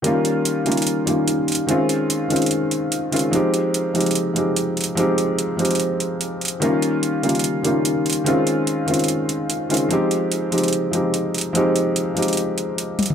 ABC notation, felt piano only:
X:1
M:4/4
L:1/16
Q:"Swing 16ths" 1/4=146
K:Fm
V:1 name="Felt piano"
[E,G,B,DF]6 [E,G,B,DF]4 [E,G,B,DF]6 | [E,A,CDF]6 [E,A,CDF]8 [E,A,CDF] z | [F,A,CEG]6 [F,A,CEG]4 [F,A,CEG]6 | [F,A,CEG]6 [F,A,CEG]8 z2 |
[E,G,B,DF]6 [E,G,B,DF]4 [E,G,B,DF]6 | [E,A,CDF]6 [E,A,CDF]8 [E,A,CDF] z | [F,A,CEG]6 [F,A,CEG]4 [F,A,CEG]6 | [F,A,CEG]6 [F,A,CEG]8 z2 |]